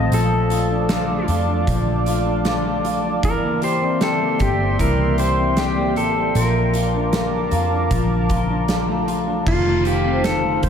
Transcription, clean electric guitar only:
0, 0, Header, 1, 2, 480
1, 0, Start_track
1, 0, Key_signature, -2, "major"
1, 0, Tempo, 779221
1, 73, Time_signature, 4, 2, 24, 8
1, 6586, End_track
2, 0, Start_track
2, 0, Title_t, "Clean electric guitar"
2, 0, Program_c, 0, 27
2, 0, Note_on_c, 0, 51, 73
2, 0, Note_on_c, 0, 57, 57
2, 0, Note_on_c, 0, 60, 46
2, 0, Note_on_c, 0, 65, 55
2, 71, Note_off_c, 0, 51, 0
2, 74, Note_on_c, 0, 53, 73
2, 121, Note_off_c, 0, 60, 0
2, 191, Note_off_c, 0, 57, 0
2, 194, Note_on_c, 0, 57, 54
2, 311, Note_off_c, 0, 65, 0
2, 313, Note_on_c, 0, 65, 58
2, 434, Note_on_c, 0, 62, 54
2, 546, Note_off_c, 0, 65, 0
2, 553, Note_on_c, 0, 65, 59
2, 666, Note_off_c, 0, 57, 0
2, 674, Note_on_c, 0, 57, 57
2, 788, Note_off_c, 0, 65, 0
2, 795, Note_on_c, 0, 65, 53
2, 906, Note_off_c, 0, 62, 0
2, 914, Note_on_c, 0, 62, 56
2, 1025, Note_off_c, 0, 53, 0
2, 1032, Note_on_c, 0, 53, 74
2, 1146, Note_off_c, 0, 57, 0
2, 1154, Note_on_c, 0, 57, 51
2, 1266, Note_off_c, 0, 65, 0
2, 1274, Note_on_c, 0, 65, 63
2, 1385, Note_off_c, 0, 62, 0
2, 1393, Note_on_c, 0, 62, 52
2, 1504, Note_off_c, 0, 65, 0
2, 1512, Note_on_c, 0, 65, 60
2, 1626, Note_off_c, 0, 57, 0
2, 1633, Note_on_c, 0, 57, 55
2, 1745, Note_off_c, 0, 65, 0
2, 1752, Note_on_c, 0, 65, 56
2, 1865, Note_off_c, 0, 62, 0
2, 1873, Note_on_c, 0, 62, 53
2, 1989, Note_off_c, 0, 53, 0
2, 1991, Note_on_c, 0, 52, 70
2, 2040, Note_off_c, 0, 65, 0
2, 2041, Note_off_c, 0, 57, 0
2, 2041, Note_off_c, 0, 62, 0
2, 2111, Note_on_c, 0, 58, 50
2, 2231, Note_on_c, 0, 67, 65
2, 2352, Note_on_c, 0, 60, 53
2, 2463, Note_off_c, 0, 67, 0
2, 2470, Note_on_c, 0, 67, 54
2, 2590, Note_off_c, 0, 58, 0
2, 2593, Note_on_c, 0, 58, 55
2, 2706, Note_off_c, 0, 67, 0
2, 2713, Note_on_c, 0, 67, 60
2, 2825, Note_off_c, 0, 60, 0
2, 2833, Note_on_c, 0, 60, 56
2, 2945, Note_off_c, 0, 52, 0
2, 2953, Note_on_c, 0, 52, 80
2, 3070, Note_off_c, 0, 58, 0
2, 3073, Note_on_c, 0, 58, 47
2, 3184, Note_off_c, 0, 67, 0
2, 3192, Note_on_c, 0, 67, 62
2, 3306, Note_off_c, 0, 60, 0
2, 3313, Note_on_c, 0, 60, 51
2, 3427, Note_off_c, 0, 67, 0
2, 3435, Note_on_c, 0, 67, 56
2, 3554, Note_off_c, 0, 58, 0
2, 3556, Note_on_c, 0, 58, 58
2, 3668, Note_off_c, 0, 67, 0
2, 3676, Note_on_c, 0, 67, 61
2, 3788, Note_off_c, 0, 60, 0
2, 3796, Note_on_c, 0, 60, 52
2, 3913, Note_off_c, 0, 52, 0
2, 3915, Note_on_c, 0, 53, 75
2, 3962, Note_off_c, 0, 60, 0
2, 3962, Note_off_c, 0, 67, 0
2, 4156, Note_on_c, 0, 65, 56
2, 4277, Note_on_c, 0, 62, 54
2, 4395, Note_off_c, 0, 65, 0
2, 4397, Note_on_c, 0, 65, 53
2, 4633, Note_off_c, 0, 65, 0
2, 4635, Note_on_c, 0, 65, 55
2, 4748, Note_off_c, 0, 62, 0
2, 4755, Note_on_c, 0, 62, 51
2, 4872, Note_off_c, 0, 53, 0
2, 4875, Note_on_c, 0, 53, 80
2, 5111, Note_off_c, 0, 65, 0
2, 5113, Note_on_c, 0, 65, 63
2, 5226, Note_off_c, 0, 62, 0
2, 5233, Note_on_c, 0, 62, 50
2, 5349, Note_off_c, 0, 65, 0
2, 5351, Note_on_c, 0, 65, 51
2, 5469, Note_off_c, 0, 58, 0
2, 5471, Note_on_c, 0, 57, 57
2, 5588, Note_off_c, 0, 65, 0
2, 5591, Note_on_c, 0, 65, 55
2, 5705, Note_off_c, 0, 62, 0
2, 5713, Note_on_c, 0, 62, 48
2, 5830, Note_off_c, 0, 53, 0
2, 5832, Note_on_c, 0, 51, 75
2, 5881, Note_off_c, 0, 62, 0
2, 5949, Note_off_c, 0, 57, 0
2, 5951, Note_on_c, 0, 57, 51
2, 6068, Note_off_c, 0, 65, 0
2, 6070, Note_on_c, 0, 65, 57
2, 6190, Note_on_c, 0, 60, 49
2, 6307, Note_off_c, 0, 65, 0
2, 6309, Note_on_c, 0, 65, 61
2, 6427, Note_off_c, 0, 57, 0
2, 6430, Note_on_c, 0, 57, 57
2, 6546, Note_off_c, 0, 65, 0
2, 6548, Note_on_c, 0, 65, 55
2, 6586, Note_off_c, 0, 51, 0
2, 6586, Note_off_c, 0, 57, 0
2, 6586, Note_off_c, 0, 60, 0
2, 6586, Note_off_c, 0, 65, 0
2, 6586, End_track
0, 0, End_of_file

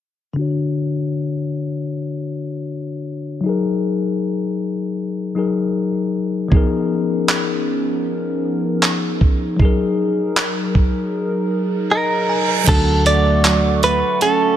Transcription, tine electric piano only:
0, 0, Header, 1, 2, 480
1, 0, Start_track
1, 0, Key_signature, 6, "major"
1, 0, Tempo, 769231
1, 228, Time_signature, 4, 2, 24, 8
1, 9090, End_track
2, 0, Start_track
2, 0, Title_t, "Tine electric piano"
2, 0, Program_c, 0, 4
2, 209, Note_on_c, 0, 50, 64
2, 226, Note_on_c, 0, 62, 58
2, 242, Note_on_c, 0, 66, 61
2, 257, Note_on_c, 0, 73, 73
2, 330, Control_c, 0, 64, 127
2, 2113, Note_off_c, 0, 50, 0
2, 2122, Note_off_c, 0, 62, 0
2, 2126, Note_on_c, 0, 54, 67
2, 2130, Note_off_c, 0, 66, 0
2, 2138, Note_off_c, 0, 73, 0
2, 2144, Note_on_c, 0, 63, 60
2, 2155, Control_c, 0, 64, 0
2, 2161, Note_on_c, 0, 68, 59
2, 2178, Note_on_c, 0, 70, 74
2, 2246, Control_c, 0, 64, 127
2, 3313, Note_off_c, 0, 54, 0
2, 3322, Note_off_c, 0, 63, 0
2, 3331, Note_off_c, 0, 68, 0
2, 3339, Note_off_c, 0, 70, 0
2, 3340, Note_on_c, 0, 54, 53
2, 3346, Note_on_c, 0, 63, 48
2, 3356, Note_on_c, 0, 68, 47
2, 3363, Note_on_c, 0, 70, 53
2, 4046, Note_on_c, 0, 53, 68
2, 4058, Note_on_c, 0, 59, 60
2, 4063, Note_off_c, 0, 63, 0
2, 4064, Note_off_c, 0, 54, 0
2, 4070, Note_on_c, 0, 63, 62
2, 4072, Note_off_c, 0, 68, 0
2, 4076, Note_off_c, 0, 70, 0
2, 4077, Control_c, 0, 64, 0
2, 4085, Note_on_c, 0, 68, 64
2, 4097, Note_on_c, 0, 70, 76
2, 4185, Control_c, 0, 64, 127
2, 5952, Note_off_c, 0, 53, 0
2, 5958, Note_off_c, 0, 59, 0
2, 5964, Note_off_c, 0, 63, 0
2, 5969, Note_on_c, 0, 54, 70
2, 5971, Note_off_c, 0, 68, 0
2, 5978, Note_off_c, 0, 70, 0
2, 5987, Note_on_c, 0, 63, 67
2, 5996, Control_c, 0, 64, 0
2, 6004, Note_on_c, 0, 68, 62
2, 6021, Note_on_c, 0, 70, 74
2, 6092, Control_c, 0, 64, 127
2, 7434, Note_on_c, 0, 75, 70
2, 7654, Note_off_c, 0, 75, 0
2, 7671, Note_on_c, 0, 80, 64
2, 7873, Note_off_c, 0, 54, 0
2, 7883, Note_off_c, 0, 63, 0
2, 7887, Note_on_c, 0, 54, 60
2, 7891, Note_off_c, 0, 68, 0
2, 7893, Note_off_c, 0, 80, 0
2, 7900, Note_off_c, 0, 70, 0
2, 7903, Note_on_c, 0, 62, 55
2, 7916, Control_c, 0, 64, 0
2, 7921, Note_on_c, 0, 66, 58
2, 8023, Control_c, 0, 64, 127
2, 9090, Note_off_c, 0, 54, 0
2, 9090, Note_off_c, 0, 62, 0
2, 9090, Note_off_c, 0, 66, 0
2, 9090, End_track
0, 0, End_of_file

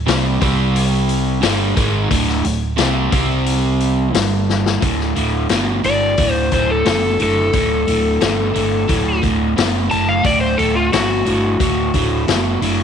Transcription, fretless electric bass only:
0, 0, Header, 1, 2, 480
1, 0, Start_track
1, 0, Tempo, 677966
1, 1492, Time_signature, 4, 2, 24, 8
1, 9085, End_track
2, 0, Start_track
2, 0, Title_t, "Fretless electric bass"
2, 0, Program_c, 0, 35
2, 48, Note_on_c, 0, 36, 87
2, 273, Note_off_c, 0, 36, 0
2, 297, Note_on_c, 0, 36, 89
2, 987, Note_off_c, 0, 36, 0
2, 1010, Note_on_c, 0, 31, 87
2, 1234, Note_off_c, 0, 31, 0
2, 1251, Note_on_c, 0, 32, 94
2, 1475, Note_off_c, 0, 32, 0
2, 1495, Note_on_c, 0, 26, 96
2, 1717, Note_off_c, 0, 26, 0
2, 1735, Note_on_c, 0, 26, 79
2, 1957, Note_off_c, 0, 26, 0
2, 1977, Note_on_c, 0, 36, 86
2, 2198, Note_off_c, 0, 36, 0
2, 2213, Note_on_c, 0, 36, 78
2, 2905, Note_off_c, 0, 36, 0
2, 2931, Note_on_c, 0, 31, 90
2, 3384, Note_off_c, 0, 31, 0
2, 3420, Note_on_c, 0, 26, 88
2, 3637, Note_off_c, 0, 26, 0
2, 3657, Note_on_c, 0, 26, 89
2, 3875, Note_off_c, 0, 26, 0
2, 3892, Note_on_c, 0, 31, 73
2, 4113, Note_off_c, 0, 31, 0
2, 4134, Note_on_c, 0, 31, 78
2, 4354, Note_off_c, 0, 31, 0
2, 4377, Note_on_c, 0, 26, 85
2, 4596, Note_off_c, 0, 26, 0
2, 4617, Note_on_c, 0, 26, 86
2, 4835, Note_off_c, 0, 26, 0
2, 4858, Note_on_c, 0, 30, 82
2, 5076, Note_off_c, 0, 30, 0
2, 5104, Note_on_c, 0, 30, 88
2, 5319, Note_off_c, 0, 30, 0
2, 5339, Note_on_c, 0, 26, 90
2, 5556, Note_off_c, 0, 26, 0
2, 5579, Note_on_c, 0, 26, 87
2, 5797, Note_off_c, 0, 26, 0
2, 5817, Note_on_c, 0, 31, 76
2, 6036, Note_off_c, 0, 31, 0
2, 6056, Note_on_c, 0, 31, 75
2, 6275, Note_off_c, 0, 31, 0
2, 6296, Note_on_c, 0, 26, 80
2, 6515, Note_off_c, 0, 26, 0
2, 6537, Note_on_c, 0, 26, 87
2, 6755, Note_off_c, 0, 26, 0
2, 6782, Note_on_c, 0, 30, 86
2, 6998, Note_off_c, 0, 30, 0
2, 7025, Note_on_c, 0, 30, 87
2, 7240, Note_off_c, 0, 30, 0
2, 7258, Note_on_c, 0, 26, 83
2, 7475, Note_off_c, 0, 26, 0
2, 7500, Note_on_c, 0, 26, 83
2, 7716, Note_off_c, 0, 26, 0
2, 7738, Note_on_c, 0, 31, 81
2, 7955, Note_off_c, 0, 31, 0
2, 7978, Note_on_c, 0, 31, 71
2, 8195, Note_off_c, 0, 31, 0
2, 8213, Note_on_c, 0, 26, 86
2, 8432, Note_off_c, 0, 26, 0
2, 8454, Note_on_c, 0, 26, 86
2, 8672, Note_off_c, 0, 26, 0
2, 8694, Note_on_c, 0, 30, 82
2, 8912, Note_off_c, 0, 30, 0
2, 8928, Note_on_c, 0, 30, 84
2, 9085, Note_off_c, 0, 30, 0
2, 9085, End_track
0, 0, End_of_file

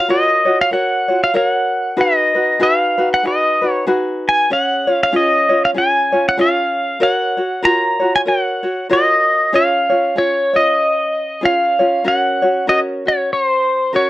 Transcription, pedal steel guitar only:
0, 0, Header, 1, 2, 480
1, 0, Start_track
1, 0, Key_signature, 6, "major"
1, 0, Tempo, 628931
1, 1510, Time_signature, 4, 2, 24, 8
1, 7272, Key_signature, -5, "major"
1, 10760, End_track
2, 0, Start_track
2, 0, Title_t, "Pedal steel guitar"
2, 0, Program_c, 0, 26
2, 80, Note_on_c, 0, 75, 90
2, 465, Note_off_c, 0, 75, 0
2, 469, Note_on_c, 0, 77, 83
2, 554, Note_off_c, 0, 77, 0
2, 557, Note_on_c, 0, 78, 89
2, 940, Note_off_c, 0, 78, 0
2, 943, Note_on_c, 0, 77, 83
2, 1038, Note_off_c, 0, 77, 0
2, 1042, Note_on_c, 0, 77, 93
2, 1126, Note_off_c, 0, 77, 0
2, 1126, Note_on_c, 0, 78, 93
2, 1530, Note_off_c, 0, 78, 0
2, 1533, Note_on_c, 0, 75, 86
2, 2003, Note_off_c, 0, 75, 0
2, 2006, Note_on_c, 0, 77, 86
2, 2355, Note_off_c, 0, 77, 0
2, 2396, Note_on_c, 0, 78, 81
2, 2485, Note_off_c, 0, 78, 0
2, 2499, Note_on_c, 0, 75, 72
2, 2834, Note_off_c, 0, 75, 0
2, 2834, Note_on_c, 0, 73, 72
2, 2935, Note_off_c, 0, 73, 0
2, 3272, Note_on_c, 0, 80, 83
2, 3454, Note_off_c, 0, 80, 0
2, 3458, Note_on_c, 0, 78, 92
2, 3740, Note_off_c, 0, 78, 0
2, 3740, Note_on_c, 0, 77, 92
2, 3838, Note_off_c, 0, 77, 0
2, 3841, Note_on_c, 0, 77, 80
2, 3920, Note_off_c, 0, 77, 0
2, 3940, Note_on_c, 0, 75, 88
2, 4309, Note_off_c, 0, 75, 0
2, 4312, Note_on_c, 0, 77, 82
2, 4351, Note_off_c, 0, 77, 0
2, 4413, Note_on_c, 0, 80, 94
2, 4795, Note_off_c, 0, 80, 0
2, 4798, Note_on_c, 0, 78, 87
2, 4887, Note_off_c, 0, 78, 0
2, 4893, Note_on_c, 0, 77, 90
2, 5363, Note_off_c, 0, 77, 0
2, 5366, Note_on_c, 0, 78, 95
2, 5839, Note_on_c, 0, 82, 105
2, 5853, Note_off_c, 0, 78, 0
2, 6222, Note_off_c, 0, 82, 0
2, 6225, Note_on_c, 0, 80, 84
2, 6263, Note_off_c, 0, 80, 0
2, 6322, Note_on_c, 0, 78, 89
2, 6766, Note_off_c, 0, 78, 0
2, 6816, Note_on_c, 0, 75, 86
2, 7289, Note_off_c, 0, 75, 0
2, 7292, Note_on_c, 0, 77, 90
2, 7772, Note_on_c, 0, 73, 84
2, 7775, Note_off_c, 0, 77, 0
2, 8054, Note_off_c, 0, 73, 0
2, 8061, Note_on_c, 0, 75, 89
2, 8739, Note_off_c, 0, 75, 0
2, 8742, Note_on_c, 0, 77, 92
2, 9219, Note_off_c, 0, 77, 0
2, 9219, Note_on_c, 0, 78, 93
2, 9683, Note_off_c, 0, 78, 0
2, 9686, Note_on_c, 0, 75, 96
2, 9761, Note_off_c, 0, 75, 0
2, 9985, Note_on_c, 0, 73, 85
2, 10169, Note_off_c, 0, 73, 0
2, 10173, Note_on_c, 0, 72, 91
2, 10651, Note_off_c, 0, 72, 0
2, 10654, Note_on_c, 0, 73, 91
2, 10760, Note_off_c, 0, 73, 0
2, 10760, End_track
0, 0, End_of_file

